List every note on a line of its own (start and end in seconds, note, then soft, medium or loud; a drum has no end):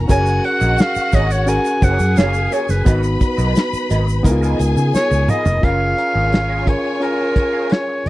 0.00 0.11 B3 medium
0.00 0.12 D#4 medium
0.00 0.11 F4 medium
0.00 0.10 A#4 loud
0.00 0.40 G#5 medium
0.08 0.39 F#1 loud
0.08 0.27 A#3 medium
0.08 1.15 C#4 medium
0.08 0.27 F4 medium
0.08 1.15 F#4 medium
0.08 1.79 F#4 medium
0.08 1.16 G#4 medium
0.08 0.28 G#4 medium
0.08 1.16 A#4 medium
0.08 0.28 C#5 medium
0.08 1.79 F#5 loud
0.08 0.46 G#5 loud
0.08 kick loud
0.08 closed hi-hat medium
0.08 shaker medium
0.26 shaker soft
0.44 0.82 F#5 loud
0.44 muted clean electric guitar stroke soft
0.44 closed hi-hat medium
0.61 0.76 A#1 medium
0.61 0.76 A#3 soft
0.61 0.76 F4 medium
0.61 0.75 G#4 medium
0.61 0.75 D#5 medium
0.61 shaker medium
0.78 1.16 F5 loud
0.78 muted clean electric guitar stroke soft
0.78 snare loud
0.78 closed hi-hat medium
0.78 shaker medium
0.95 muted fingered electric bass stroke soft
0.95 shaker medium
1.12 1.57 G#1 medium
1.12 1.27 A#3 medium
1.12 1.27 F4 medium
1.12 1.27 G#4 medium
1.12 1.28 C#5 medium
1.12 1.33 D#5 medium
1.12 kick medium
1.12 closed hi-hat medium
1.12 shaker medium
1.30 1.50 C#5 medium
1.30 muted clean electric guitar stroke soft
1.30 shaker medium
1.47 2.53 C#4 medium
1.47 2.54 F#4 medium
1.47 2.54 G#4 medium
1.47 2.54 A#4 medium
1.47 1.85 G#5 loud
1.47 closed hi-hat medium
1.47 shaker medium
1.64 muted clean electric guitar stroke soft
1.64 shaker soft
1.82 1.97 F#1 loud
1.82 2.02 A#3 medium
1.82 1.99 F4 medium
1.82 2.84 G#4 medium
1.82 1.99 G#4 medium
1.82 1.98 C#5 medium
1.82 2.19 F#5 loud
1.82 2.84 G#5 medium
1.82 kick loud
1.82 closed hi-hat medium
1.82 shaker medium
1.99 2.14 F#2 loud
1.99 muted clean electric guitar stroke soft
1.99 shaker medium
2.16 2.47 F#1 medium
2.16 2.35 A#3 medium
2.16 2.34 F4 medium
2.16 2.33 G#4 medium
2.16 2.32 C#5 medium
2.16 2.55 F5 medium
2.16 snare loud
2.16 closed hi-hat medium
2.16 shaker medium
2.34 muted clean electric guitar stroke soft
2.34 shaker soft
2.51 2.65 A#3 medium
2.51 2.66 F4 medium
2.51 2.66 G#4 medium
2.51 2.66 C#5 medium
2.51 2.72 C#5 medium
2.51 closed hi-hat medium
2.51 shaker soft
2.68 2.84 F#1 medium
2.68 3.04 B4 medium
2.68 muted clean electric guitar stroke soft
2.68 snare soft
2.68 shaker medium
2.85 3.16 G#1 loud
2.85 3.92 B3 medium
2.85 3.04 B3 medium
2.85 3.92 D#4 medium
2.85 3.92 F#4 medium
2.85 3.04 F#4 medium
2.85 3.04 A#4 medium
2.85 4.22 B4 medium
2.85 3.93 B4 medium
2.85 3.05 D#5 medium
2.85 4.22 B5 loud
2.85 kick loud
2.85 closed hi-hat medium
2.85 shaker medium
3.03 shaker soft
3.20 muted clean electric guitar stroke soft
3.20 kick medium
3.20 closed hi-hat medium
3.20 shaker soft
3.37 3.53 B1 medium
3.37 3.52 B3 soft
3.37 3.52 F#4 medium
3.37 3.52 A#4 medium
3.37 3.52 D#5 medium
3.37 shaker medium
3.55 muted clean electric guitar stroke soft
3.55 snare loud
3.55 closed hi-hat medium
3.55 shaker medium
3.73 muted fingered electric bass stroke soft
3.73 shaker medium
3.89 4.20 G#1 medium
3.89 4.04 B3 medium
3.89 4.04 F#4 medium
3.89 4.04 A#4 medium
3.89 4.05 D#5 medium
3.89 closed hi-hat medium
3.89 shaker medium
4.07 muted clean electric guitar stroke soft
4.07 shaker soft
4.23 4.54 C#2 loud
4.23 5.30 B3 medium
4.23 5.30 D#4 medium
4.23 4.31 E4 medium
4.23 5.60 G#4 medium
4.23 5.31 A#4 medium
4.23 5.60 G#5 loud
4.23 muted clean electric guitar stroke soft
4.23 kick medium
4.23 closed hi-hat medium
4.23 shaker medium
4.31 5.34 F4 medium
4.41 4.58 B3 medium
4.41 4.58 F4 medium
4.41 4.58 A#4 medium
4.41 4.59 D#5 medium
4.41 shaker soft
4.59 4.74 C#2 medium
4.59 muted clean electric guitar stroke soft
4.59 closed hi-hat medium
4.59 shaker medium
4.76 4.91 C#3 medium
4.76 muted clean electric guitar stroke soft
4.76 shaker medium
4.93 5.31 C#5 loud
4.93 muted clean electric guitar stroke soft
4.93 muted fingered electric bass stroke soft
4.93 snare medium
4.93 shaker medium
5.11 5.26 C#2 medium
5.11 muted clean electric guitar stroke soft
5.11 shaker soft
5.28 5.42 B3 medium
5.28 5.42 F4 medium
5.28 5.43 A#4 medium
5.28 5.66 D#5 medium
5.28 5.43 F5 medium
5.28 mid tom medium
5.28 shaker soft
5.45 5.60 F1 medium
5.45 5.60 B3 soft
5.45 5.60 F4 soft
5.45 5.60 A#4 soft
5.45 5.59 D#5 medium
5.45 floor tom loud
5.45 shaker medium
5.61 5.93 F#1 medium
5.61 6.42 C#4 medium
5.61 5.81 C#4 medium
5.61 6.42 F4 medium
5.61 8.09 F4 medium
5.61 5.81 G#4 medium
5.61 6.43 G#4 medium
5.61 5.81 A#4 medium
5.61 6.43 A#4 medium
5.61 8.09 C#5 medium
5.61 5.81 F5 medium
5.61 6.70 F5 loud
5.61 8.09 G#5 medium
5.61 kick loud
5.61 closed hi-hat medium
5.97 7.70 A#5 medium
5.97 muted clean electric guitar stroke soft
5.97 closed hi-hat medium
6.15 6.74 G#1 medium
6.15 6.30 C#4 soft
6.15 6.29 G#4 soft
6.15 6.29 A#4 soft
6.15 6.29 F5 soft
6.32 muted clean electric guitar stroke soft
6.32 snare loud
6.32 closed hi-hat medium
6.49 6.66 C#4 medium
6.49 6.66 G#4 medium
6.49 6.66 A#4 medium
6.49 6.67 F5 medium
6.66 6.93 C#4 medium
6.66 6.93 F4 medium
6.66 6.94 G#4 medium
6.66 6.94 A#4 medium
6.66 7.02 C#5 medium
6.66 muted clean electric guitar stroke soft
6.66 kick medium
6.66 closed hi-hat medium
6.84 muted clean electric guitar stroke soft
7.00 8.07 C#4 medium
7.00 8.07 F4 medium
7.00 8.08 G#4 medium
7.00 8.08 A#4 medium
7.00 7.74 A#4 medium
7.00 muted clean electric guitar stroke soft
7.00 closed hi-hat medium
7.19 muted clean electric guitar stroke soft
7.36 kick medium
7.36 closed hi-hat medium
7.53 7.69 C#4 medium
7.53 7.70 G#4 medium
7.53 7.70 A#4 medium
7.53 7.71 F5 medium
7.70 8.09 C#5 medium
7.70 muted clean electric guitar stroke soft
7.70 snare medium
7.70 closed hi-hat medium
7.88 muted clean electric guitar stroke soft
8.06 8.09 F#1 medium
8.06 closed hi-hat medium